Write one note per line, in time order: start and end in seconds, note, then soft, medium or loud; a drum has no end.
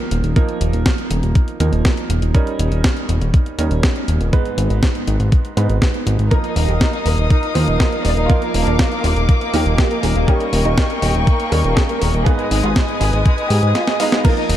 0.00 0.33 F3 medium
0.00 0.33 A#3 medium
0.00 0.33 D#4 medium
0.00 0.33 A#4 medium
0.11 0.22 D#1 medium
0.11 closed hi-hat medium
0.24 0.35 D#1 medium
0.24 closed hi-hat soft
0.36 1.57 F3 medium
0.36 1.57 A#3 medium
0.36 1.57 D#4 medium
0.36 1.57 A#4 medium
0.36 kick loud
0.36 closed hi-hat medium
0.49 closed hi-hat soft
0.61 0.72 D#1 medium
0.61 closed hi-hat loud
0.73 0.84 D#1 medium
0.73 closed hi-hat soft
0.86 kick loud
0.86 snare loud
0.86 closed hi-hat medium
0.98 closed hi-hat soft
1.10 1.22 D#1 medium
1.10 closed hi-hat medium
1.23 1.34 D#1 medium
1.23 closed hi-hat soft
1.35 kick loud
1.35 closed hi-hat medium
1.48 closed hi-hat soft
1.60 1.71 D#2 medium
1.60 2.32 F3 medium
1.60 2.32 A#3 medium
1.60 2.32 D#4 medium
1.60 2.32 A#4 medium
1.60 closed hi-hat medium
1.72 1.84 D#1 medium
1.72 closed hi-hat soft
1.85 kick loud
1.85 snare loud
1.85 closed hi-hat medium
1.97 closed hi-hat soft
2.10 2.21 D#1 loud
2.10 closed hi-hat loud
2.22 2.33 D#1 medium
2.22 closed hi-hat soft
2.34 3.56 G3 medium
2.34 3.56 C#4 medium
2.34 3.56 D#4 medium
2.34 3.56 A#4 medium
2.34 kick loud
2.34 closed hi-hat medium
2.47 closed hi-hat soft
2.59 2.70 D#1 medium
2.59 closed hi-hat medium
2.72 2.83 D#1 medium
2.72 closed hi-hat soft
2.84 kick loud
2.84 snare loud
2.84 closed hi-hat medium
2.97 closed hi-hat soft
3.09 3.20 D#1 loud
3.09 closed hi-hat medium
3.21 3.32 D#1 medium
3.21 closed hi-hat soft
3.34 kick loud
3.34 closed hi-hat medium
3.46 closed hi-hat soft
3.59 3.70 D#2 medium
3.59 4.30 G3 medium
3.59 4.30 C#4 medium
3.59 4.30 D#4 medium
3.59 4.30 A#4 medium
3.59 closed hi-hat medium
3.71 3.82 D#1 medium
3.71 closed hi-hat soft
3.83 kick loud
3.83 snare loud
3.83 closed hi-hat medium
3.96 closed hi-hat soft
4.08 4.19 D#1 medium
4.08 closed hi-hat medium
4.21 4.32 D#1 medium
4.21 closed hi-hat soft
4.33 5.54 G#2 medium
4.33 5.54 G#3 medium
4.33 5.54 B3 medium
4.33 5.54 D#4 medium
4.33 5.54 B4 medium
4.33 kick loud
4.33 closed hi-hat medium
4.45 closed hi-hat soft
4.58 4.69 G#1 medium
4.58 closed hi-hat medium
4.70 4.81 G#1 medium
4.70 closed hi-hat soft
4.83 kick loud
4.83 snare loud
4.83 closed hi-hat medium
4.95 closed hi-hat soft
5.07 5.18 G#1 medium
5.07 closed hi-hat medium
5.20 5.31 G#1 medium
5.20 closed hi-hat soft
5.32 kick loud
5.32 closed hi-hat medium
5.45 closed hi-hat soft
5.57 5.68 G#2 medium
5.57 6.28 G#2 medium
5.57 6.28 G#3 medium
5.57 6.28 B3 medium
5.57 6.28 D#4 medium
5.57 6.28 B4 medium
5.57 closed hi-hat medium
5.69 5.80 G#1 medium
5.69 closed hi-hat soft
5.82 kick loud
5.82 snare loud
5.82 closed hi-hat medium
5.94 closed hi-hat soft
6.06 6.18 G#1 medium
6.06 closed hi-hat medium
6.19 6.30 G#1 medium
6.19 closed hi-hat soft
6.31 7.52 F3 medium
6.31 7.52 A#3 medium
6.31 7.52 D#4 medium
6.31 10.24 A#4 medium
6.31 7.52 A#4 medium
6.31 6.40 A#4 medium
6.31 14.21 D#5 medium
6.31 10.24 F5 medium
6.31 8.28 D#6 medium
6.31 kick loud
6.31 closed hi-hat medium
6.44 6.52 D#4 medium
6.44 closed hi-hat soft
6.56 6.67 D#1 medium
6.56 6.65 D#4 medium
6.56 open hi-hat loud
6.68 6.80 D#1 medium
6.68 6.77 G4 medium
6.68 closed hi-hat soft
6.81 6.89 D#4 medium
6.81 kick loud
6.81 snare loud
6.81 closed hi-hat medium
6.93 7.02 D#4 medium
6.93 closed hi-hat soft
7.06 7.17 D#1 loud
7.06 7.14 A#4 medium
7.06 open hi-hat medium
7.18 7.29 D#1 medium
7.18 7.27 D#4 medium
7.18 closed hi-hat soft
7.30 7.39 D#4 medium
7.30 kick loud
7.30 closed hi-hat medium
7.43 7.51 D#4 medium
7.43 closed hi-hat soft
7.55 7.66 D#2 medium
7.55 8.27 F3 medium
7.55 8.27 A#3 medium
7.55 8.27 D#4 medium
7.55 8.27 A#4 medium
7.55 7.64 C5 medium
7.55 open hi-hat loud
7.68 7.79 D#1 medium
7.68 7.76 D#4 medium
7.68 closed hi-hat soft
7.80 7.89 C5 medium
7.80 kick loud
7.80 snare loud
7.80 closed hi-hat medium
7.92 8.01 D#4 medium
7.92 closed hi-hat soft
8.05 8.16 D#1 medium
8.05 8.13 D5 medium
8.05 open hi-hat medium
8.17 8.28 D#1 medium
8.17 8.26 D#4 medium
8.17 closed hi-hat soft
8.29 9.51 F3 medium
8.29 9.51 A#3 medium
8.29 9.51 D#4 medium
8.29 8.38 F4 loud
8.29 9.51 A#4 medium
8.29 10.26 D6 medium
8.29 kick loud
8.29 closed hi-hat medium
8.42 8.51 A#3 medium
8.42 closed hi-hat soft
8.54 8.66 D#1 medium
8.54 8.63 A#3 medium
8.54 open hi-hat loud
8.67 8.78 D#1 medium
8.67 8.75 D4 medium
8.67 closed hi-hat soft
8.79 8.88 A#3 medium
8.79 kick loud
8.79 snare loud
8.79 closed hi-hat medium
8.91 9.00 A#3 medium
8.91 closed hi-hat soft
9.04 9.15 D#1 loud
9.04 9.12 F4 medium
9.04 open hi-hat medium
9.16 9.28 D#1 medium
9.16 9.25 A#3 medium
9.16 closed hi-hat soft
9.29 9.37 A#3 medium
9.29 kick loud
9.29 closed hi-hat medium
9.41 9.50 A#3 medium
9.41 closed hi-hat soft
9.53 9.65 D#2 medium
9.53 10.25 F3 medium
9.53 10.25 A#3 medium
9.53 10.25 D#4 medium
9.53 9.62 G4 medium
9.53 10.25 A#4 medium
9.53 open hi-hat loud
9.66 9.77 D#1 medium
9.66 9.75 A#3 medium
9.66 closed hi-hat soft
9.78 9.87 G4 medium
9.78 kick medium
9.78 snare loud
9.78 closed hi-hat medium
9.91 9.99 A#3 medium
9.91 closed hi-hat soft
10.03 10.14 D#1 loud
10.03 10.12 G#4 medium
10.03 open hi-hat medium
10.16 10.27 D#1 medium
10.16 10.24 A#3 medium
10.16 closed hi-hat soft
10.28 11.49 G3 medium
10.28 11.49 C#4 medium
10.28 11.49 D#4 medium
10.28 10.37 G4 loud
10.28 11.49 A#4 medium
10.28 12.24 A#4 medium
10.28 12.24 G5 medium
10.28 12.24 C#6 medium
10.28 kick loud
10.28 closed hi-hat medium
10.40 10.49 A#3 medium
10.40 closed hi-hat soft
10.53 10.64 D#1 medium
10.53 10.61 A#3 medium
10.53 open hi-hat loud
10.65 10.76 D#1 medium
10.65 10.74 D#4 medium
10.65 closed hi-hat soft
10.78 10.86 A#3 medium
10.78 kick loud
10.78 snare loud
10.78 closed hi-hat medium
10.90 10.99 A#3 medium
10.90 closed hi-hat soft
11.02 11.13 D#1 loud
11.02 11.11 G4 medium
11.02 open hi-hat medium
11.15 11.26 D#1 medium
11.15 11.23 A#3 medium
11.15 closed hi-hat soft
11.27 11.36 A#3 medium
11.27 kick loud
11.27 closed hi-hat medium
11.40 11.48 A#3 medium
11.40 closed hi-hat soft
11.52 11.63 D#2 medium
11.52 12.23 G3 medium
11.52 12.23 C#4 medium
11.52 12.23 D#4 medium
11.52 11.61 G#4 medium
11.52 12.23 A#4 medium
11.52 open hi-hat loud
11.64 11.75 D#1 medium
11.64 11.73 A#3 medium
11.64 closed hi-hat soft
11.77 11.85 G#4 medium
11.77 kick loud
11.77 snare loud
11.77 closed hi-hat medium
11.89 11.98 A#3 medium
11.89 closed hi-hat soft
12.02 12.13 D#1 medium
12.02 12.10 A#4 medium
12.02 open hi-hat medium
12.14 12.25 D#1 medium
12.14 12.23 A#3 medium
12.14 closed hi-hat soft
12.26 13.47 G#2 medium
12.26 13.47 G#3 medium
12.26 13.47 B3 medium
12.26 13.47 D#4 medium
12.26 12.35 G#4 loud
12.26 13.47 B4 medium
12.26 14.23 B4 medium
12.26 14.23 G#5 medium
12.26 14.23 D#6 medium
12.26 kick loud
12.26 closed hi-hat medium
12.39 12.47 G#3 medium
12.39 closed hi-hat soft
12.51 12.62 G#1 medium
12.51 12.60 G#3 medium
12.51 open hi-hat loud
12.63 12.75 G#1 medium
12.63 12.72 F4 medium
12.63 closed hi-hat soft
12.76 12.85 G#3 medium
12.76 kick loud
12.76 snare loud
12.76 closed hi-hat medium
12.88 12.97 G#3 medium
12.88 closed hi-hat soft
13.01 13.12 G#1 medium
13.01 13.09 G#4 medium
13.01 open hi-hat medium
13.13 13.24 G#1 medium
13.13 13.22 G#3 medium
13.13 closed hi-hat soft
13.26 13.34 G#3 medium
13.26 kick loud
13.26 closed hi-hat medium
13.38 13.47 G#3 medium
13.38 closed hi-hat soft
13.50 13.61 G#2 medium
13.50 13.59 G4 medium
13.50 open hi-hat loud
13.63 13.74 G#2 medium
13.63 13.71 G#3 medium
13.63 closed hi-hat soft
13.75 13.84 F4 medium
13.75 snare medium
13.75 closed hi-hat medium
13.87 13.96 G#3 medium
13.87 snare medium
13.87 closed hi-hat soft
14.00 14.22 G#3 medium
14.00 14.22 B3 medium
14.00 14.22 D#4 medium
14.00 14.09 D#4 medium
14.00 14.22 F5 medium
14.00 open hi-hat medium
14.12 14.21 G#3 medium
14.12 snare medium
14.12 closed hi-hat soft
14.25 14.57 F3 medium
14.25 14.33 A#3 medium
14.25 14.57 A#3 medium
14.25 14.57 D#4 medium
14.25 14.57 A#4 medium
14.25 14.33 A#4 loud
14.25 14.57 A#4 loud
14.25 14.57 D#5 medium
14.25 14.57 F5 medium
14.25 14.57 D#6 medium
14.25 kick loud
14.25 closed hi-hat medium
14.25 crash loud
14.37 14.46 D#4 medium
14.37 closed hi-hat soft
14.49 14.57 D#1 medium
14.49 14.57 D#4 medium
14.49 open hi-hat loud